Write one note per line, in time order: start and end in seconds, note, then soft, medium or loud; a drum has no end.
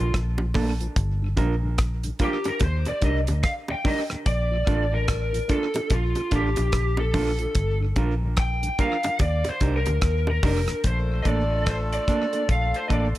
0.00 0.14 A#1 medium
0.00 0.13 F4 medium
0.14 0.87 A#1 medium
0.14 kick loud
0.14 cross-stick loud
0.14 closed hi-hat medium
0.38 0.46 A#2 medium
0.38 0.46 F3 medium
0.38 high bongo medium
0.54 0.65 A3 medium
0.54 0.72 A#3 medium
0.54 0.65 A#3 medium
0.54 0.72 D4 medium
0.54 0.66 D4 medium
0.54 0.72 A4 medium
0.54 kick medium
0.54 open hi-hat medium
0.54 low bongo medium
0.81 0.87 A#2 medium
0.81 0.87 F3 medium
0.81 closed hi-hat soft
0.96 1.33 G1 loud
0.96 kick loud
0.96 closed hi-hat medium
1.22 1.29 G2 medium
1.22 1.29 D3 medium
1.37 2.10 A#1 medium
1.37 1.47 G3 medium
1.37 1.47 A#3 medium
1.37 1.54 D4 medium
1.37 1.54 F4 medium
1.37 1.48 F4 medium
1.37 1.55 A#4 loud
1.37 kick medium
1.37 closed hi-hat medium
1.37 high bongo medium
1.63 1.69 G2 medium
1.63 1.69 D3 medium
1.78 kick loud
1.78 cross-stick loud
1.78 closed hi-hat medium
2.03 2.10 G2 medium
2.03 2.10 D3 medium
2.03 closed hi-hat medium
2.19 2.29 G3 medium
2.19 2.30 A#3 medium
2.19 2.37 D4 medium
2.19 2.30 F4 medium
2.19 2.37 F4 medium
2.19 2.38 A#4 medium
2.19 kick medium
2.19 closed hi-hat medium
2.24 2.48 G4 medium
2.44 2.52 G2 medium
2.44 2.52 D3 medium
2.44 2.63 A#4 medium
2.44 closed hi-hat medium
2.44 high bongo medium
2.60 2.84 D#2 loud
2.60 kick loud
2.60 closed hi-hat medium
2.60 high bongo medium
2.64 2.87 C5 loud
2.85 2.93 D#2 medium
2.85 2.93 A#2 medium
2.85 3.04 D5 loud
2.85 closed hi-hat medium
2.85 high bongo medium
3.01 3.25 C2 loud
3.01 3.11 G3 medium
3.01 3.12 D4 medium
3.01 3.20 D4 medium
3.01 3.12 D#4 medium
3.01 3.20 G4 medium
3.01 3.20 A#4 loud
3.01 kick medium
3.01 closed hi-hat medium
3.05 3.16 D#5 medium
3.27 3.43 D2 medium
3.27 3.34 D#2 medium
3.27 3.34 A#2 medium
3.27 closed hi-hat medium
3.27 high bongo medium
3.43 3.51 F5 loud
3.43 kick loud
3.43 cross-stick loud
3.43 closed hi-hat medium
3.68 3.75 D#2 medium
3.68 3.75 A#2 medium
3.68 3.87 G5 loud
3.68 high bongo medium
3.84 3.94 G3 medium
3.84 4.02 D4 medium
3.84 3.95 D4 medium
3.84 3.95 D#4 medium
3.84 4.02 G4 medium
3.84 4.02 A#4 medium
3.84 3.97 D#5 loud
3.84 kick loud
3.84 open hi-hat medium
3.84 low bongo medium
4.10 4.17 D#2 medium
4.10 4.17 A#2 medium
4.10 cross-stick medium
4.10 closed hi-hat soft
4.26 4.63 A#1 loud
4.26 4.95 D5 loud
4.26 kick loud
4.26 closed hi-hat loud
4.51 4.57 A#2 medium
4.51 4.57 F3 medium
4.67 5.39 A1 medium
4.67 4.77 A3 medium
4.67 4.77 A#3 medium
4.67 4.84 D4 medium
4.67 4.77 D4 medium
4.67 4.84 F4 medium
4.67 4.84 A4 medium
4.67 kick medium
4.67 closed hi-hat medium
4.67 high bongo medium
4.92 4.98 A#2 medium
4.92 4.98 F3 medium
4.92 5.52 A#4 loud
5.08 kick loud
5.08 cross-stick loud
5.08 closed hi-hat medium
5.33 5.39 A#2 medium
5.33 5.39 F3 medium
5.33 closed hi-hat medium
5.48 5.58 A3 medium
5.48 5.59 A#3 medium
5.48 5.59 D4 medium
5.48 5.66 D4 medium
5.48 5.67 F4 loud
5.48 5.67 A4 medium
5.48 kick medium
5.48 closed hi-hat medium
5.52 5.93 A4 medium
5.74 5.81 A#2 medium
5.74 5.81 F3 medium
5.74 closed hi-hat medium
5.74 high bongo medium
5.90 6.13 A#1 loud
5.90 6.30 F4 medium
5.90 kick loud
5.90 closed hi-hat medium
5.90 high bongo medium
6.15 6.22 A#2 medium
6.15 6.22 F3 medium
6.15 closed hi-hat medium
6.15 high bongo medium
6.31 6.54 A1 medium
6.31 6.41 A3 medium
6.31 6.41 A#3 medium
6.31 6.41 D4 medium
6.31 6.48 D4 medium
6.31 6.49 F4 medium
6.31 7.02 G4 medium
6.31 6.49 A4 medium
6.31 kick medium
6.31 closed hi-hat medium
6.56 6.72 A#1 medium
6.56 6.63 A#2 medium
6.56 6.63 F3 medium
6.56 closed hi-hat medium
6.56 high bongo medium
6.72 7.45 A#1 loud
6.72 kick loud
6.72 cross-stick loud
6.72 closed hi-hat medium
6.97 7.04 A#2 medium
6.97 7.04 F3 medium
6.97 7.77 A4 medium
6.97 high bongo medium
7.14 7.23 A3 medium
7.14 7.24 A#3 medium
7.14 7.31 D4 medium
7.14 7.24 D4 medium
7.14 7.31 F4 medium
7.14 7.31 A4 loud
7.14 kick loud
7.14 open hi-hat medium
7.14 low bongo medium
7.39 7.46 A#2 medium
7.39 7.45 F3 medium
7.39 closed hi-hat medium
7.55 7.92 G1 loud
7.55 kick loud
7.55 closed hi-hat loud
7.80 7.86 G2 medium
7.80 7.87 D3 medium
7.96 8.69 A#1 medium
7.96 8.06 G3 medium
7.96 8.06 A#3 medium
7.96 8.13 D4 medium
7.96 8.06 F4 medium
7.96 8.14 F4 medium
7.96 8.14 A#4 medium
7.96 kick medium
7.96 closed hi-hat medium
7.96 high bongo medium
8.22 8.28 G2 medium
8.22 8.28 D3 medium
8.37 8.77 G5 loud
8.37 kick loud
8.37 cross-stick loud
8.37 closed hi-hat medium
8.63 8.69 G2 medium
8.63 8.69 D3 medium
8.63 closed hi-hat medium
8.79 8.89 G3 medium
8.79 8.89 A#3 medium
8.79 8.95 D4 medium
8.79 8.96 F4 medium
8.79 8.89 F4 medium
8.79 8.96 A#4 loud
8.79 9.21 F5 loud
8.79 kick medium
8.79 closed hi-hat medium
9.03 9.10 G2 medium
9.03 9.10 D3 medium
9.03 closed hi-hat medium
9.03 high bongo medium
9.19 9.42 D#2 loud
9.19 9.49 D5 loud
9.19 kick loud
9.19 closed hi-hat medium
9.19 high bongo medium
9.44 9.52 D#2 medium
9.44 9.51 A#2 medium
9.44 closed hi-hat medium
9.44 high bongo medium
9.49 9.74 C5 medium
9.61 9.83 C2 medium
9.61 9.71 G3 medium
9.61 9.78 D4 medium
9.61 9.71 D4 medium
9.61 9.71 D#4 medium
9.61 9.78 G4 loud
9.61 9.78 A#4 loud
9.61 kick medium
9.61 closed hi-hat medium
9.77 10.29 A#4 medium
9.86 10.01 D2 medium
9.86 9.92 D#2 medium
9.86 9.92 A#2 medium
9.86 closed hi-hat medium
9.86 high bongo medium
10.01 10.38 D#2 medium
10.01 kick loud
10.01 cross-stick loud
10.01 closed hi-hat medium
10.27 10.34 D#2 medium
10.27 10.34 A#2 medium
10.27 10.81 A#4 medium
10.27 high bongo medium
10.43 10.65 F1 medium
10.43 10.53 G3 medium
10.43 10.53 D4 medium
10.43 10.60 D4 medium
10.43 10.53 D#4 medium
10.43 10.60 G4 medium
10.43 10.61 A#4 loud
10.43 kick loud
10.43 open hi-hat medium
10.43 low bongo medium
10.68 10.75 D#2 medium
10.68 10.75 A#2 medium
10.68 cross-stick medium
10.68 closed hi-hat medium
10.84 11.21 A#1 loud
10.84 13.18 A3 medium
10.84 13.18 D4 medium
10.84 13.18 F4 medium
10.84 13.18 A4 medium
10.84 11.19 C5 medium
10.84 kick loud
10.84 closed hi-hat medium
11.23 11.98 A1 medium
11.23 11.42 A#3 medium
11.23 11.43 D4 medium
11.23 11.27 D#5 medium
11.23 kick medium
11.23 closed hi-hat medium
11.27 11.43 A4 medium
11.27 11.69 D5 medium
11.66 11.75 C5 medium
11.66 kick loud
11.66 cross-stick loud
11.66 closed hi-hat medium
11.92 12.46 D5 medium
11.92 closed hi-hat medium
12.08 12.24 A#3 medium
12.08 12.25 D4 medium
12.08 12.25 A4 medium
12.08 kick medium
12.08 closed hi-hat medium
12.33 12.42 A#3 soft
12.33 12.42 D4 medium
12.33 12.41 A4 medium
12.33 closed hi-hat soft
12.49 12.71 A#1 medium
12.49 12.76 F5 medium
12.49 kick loud
12.49 closed hi-hat medium
12.74 12.86 C5 medium
12.74 closed hi-hat soft
12.88 13.13 A1 medium
12.88 13.06 A#3 medium
12.88 13.07 D4 medium
12.88 13.07 A4 medium
12.88 12.92 D#5 medium
12.88 kick medium
12.88 closed hi-hat medium
12.93 13.04 D5 medium
13.15 closed hi-hat medium